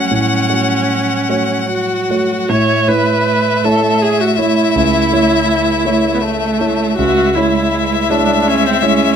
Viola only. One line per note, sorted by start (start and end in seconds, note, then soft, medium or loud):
0.00 1.69 C#4 medium
1.70 2.51 F#4 medium
2.49 2.90 C#5 medium
2.88 3.66 B4 medium
3.64 4.03 A4 medium
4.02 4.22 G#4 medium
4.21 4.39 F#4 medium
4.38 6.16 E4 medium
6.15 6.23 B3 medium
6.21 6.96 A3 medium
6.96 7.36 F#4 medium
7.35 8.11 E4 medium
8.09 8.48 D4 medium
8.47 8.68 C#4 medium
8.66 8.84 C4 medium
8.82 9.16 C#4 medium